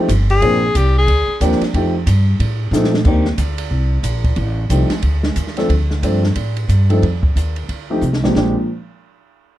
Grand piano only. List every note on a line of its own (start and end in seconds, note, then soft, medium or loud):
0.42 0.60 F3 medium
0.42 0.60 A#3 medium
0.42 0.60 C4 medium
0.42 0.60 D4 medium
0.42 0.60 G#4 medium
1.41 1.59 F3 medium
1.41 1.59 A#3 medium
1.41 1.59 C4 medium
1.41 1.59 D4 medium
1.41 1.59 G4 medium
1.75 1.92 F3 medium
1.75 1.92 A3 medium
1.75 1.92 C4 soft
1.75 1.93 D#4 medium
1.75 1.93 G4 medium
2.73 2.91 F3 medium
2.73 2.91 A3 medium
2.73 2.91 C4 medium
2.73 2.91 D#4 medium
2.73 2.91 A4 medium
3.06 3.24 D#3 medium
3.06 3.24 A#3 medium
3.06 3.25 C4 medium
3.06 3.24 D4 medium
3.06 3.25 G4 medium
4.70 4.89 F3 soft
4.70 4.89 A3 medium
4.70 4.89 C4 soft
4.70 4.89 D#4 soft
4.70 4.90 G4 medium
5.57 5.69 F3 medium
5.57 5.69 A3 medium
5.57 5.69 C4 medium
5.57 5.69 D4 medium
5.57 5.69 A4 medium
6.03 6.22 F3 medium
6.03 6.22 A3 medium
6.03 6.22 C4 medium
6.03 6.22 D4 soft
6.03 6.22 A4 medium
6.89 7.01 F3 medium
6.89 7.01 A3 medium
6.89 7.01 C4 medium
6.89 7.01 D#4 medium
6.89 7.01 A4 medium
7.90 8.01 F3 medium
7.90 8.01 A3 medium
7.90 8.01 C4 medium
7.90 8.01 D#4 medium
7.90 8.01 G4 medium
8.23 8.66 A#2 medium
8.23 8.66 F3 medium
8.23 8.34 G#3 medium
8.23 8.35 C4 medium
8.23 8.35 D4 medium
8.23 8.35 G4 medium
8.36 8.54 G#3 medium
8.36 8.54 C4 medium
8.36 8.54 D4 medium
8.36 8.54 G4 medium